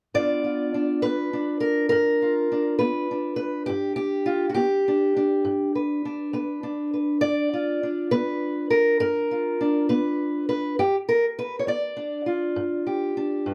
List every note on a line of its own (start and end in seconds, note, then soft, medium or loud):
0.14 0.68 G2 medium
0.14 1.04 B3 soft
0.14 0.74 D4 soft
0.14 0.44 F4 soft
0.14 1.02 D5 loud
0.44 2.21 F4 soft
0.74 1.33 D4 soft
1.02 1.57 B3 medium
1.02 1.60 B4 loud
1.33 2.51 D4 soft
1.60 1.88 A#4 medium
1.89 2.45 G2 medium
1.89 2.78 A#4 loud
2.22 3.69 F4 soft
2.52 3.11 D4 soft
2.79 3.33 B3 medium
2.79 3.35 B4 medium
3.11 4.87 D4 soft
3.36 3.66 B4 medium
3.66 4.22 G2 medium
3.66 3.95 G4 medium
3.96 4.53 G4 medium
4.26 4.49 F4 medium
4.49 4.57 F#4 medium
4.54 5.10 B3 medium
4.54 5.74 G4 medium
4.88 5.16 D4 soft
5.17 6.05 D4 soft
5.45 5.98 G2 medium
5.75 6.34 B4 soft
6.05 6.63 D4 soft
6.33 6.87 B3 medium
6.33 6.93 B4 soft
6.63 7.83 D4 soft
6.94 7.21 B4 soft
7.21 7.76 G2 medium
7.21 8.11 D5 loud
7.53 9.30 F4 soft
7.83 9.59 D4 soft
8.11 8.65 B3 medium
8.11 8.70 B4 loud
8.70 8.99 A#4 medium
9.00 9.54 G2 medium
9.00 9.89 A#4 medium
9.31 10.75 F4 soft
9.61 10.75 D4 medium
9.89 10.43 B3 medium
9.89 10.48 B4 medium
10.49 10.78 B4 medium
10.79 11.32 G2 medium
10.79 10.95 G4 medium
11.09 11.25 A#4 medium
11.39 11.59 B4 medium
11.59 11.67 C#5 medium
11.67 12.20 B3 medium
11.67 12.86 D5 medium
11.97 13.15 D4 soft
12.26 13.54 F4 soft
12.56 13.09 G2 medium
12.87 13.54 G4 soft
13.17 13.54 D4 soft
13.46 13.54 G2 medium